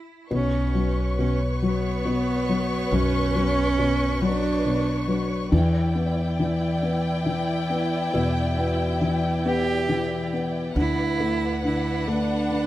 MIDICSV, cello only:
0, 0, Header, 1, 2, 480
1, 0, Start_track
1, 0, Tempo, 871460
1, 165, Time_signature, 6, 3, 24, 8
1, 6976, End_track
2, 0, Start_track
2, 0, Title_t, "Cello"
2, 0, Program_c, 0, 42
2, 184, Note_on_c, 0, 61, 89
2, 633, Note_off_c, 0, 61, 0
2, 661, Note_on_c, 0, 61, 81
2, 765, Note_off_c, 0, 61, 0
2, 904, Note_on_c, 0, 59, 91
2, 1624, Note_on_c, 0, 61, 106
2, 1632, Note_off_c, 0, 59, 0
2, 2336, Note_on_c, 0, 62, 97
2, 2345, Note_off_c, 0, 61, 0
2, 2871, Note_off_c, 0, 62, 0
2, 5215, Note_on_c, 0, 67, 104
2, 5667, Note_off_c, 0, 67, 0
2, 5943, Note_on_c, 0, 64, 106
2, 6391, Note_off_c, 0, 64, 0
2, 6422, Note_on_c, 0, 64, 96
2, 6656, Note_on_c, 0, 62, 102
2, 6665, Note_off_c, 0, 64, 0
2, 6976, Note_off_c, 0, 62, 0
2, 6976, End_track
0, 0, End_of_file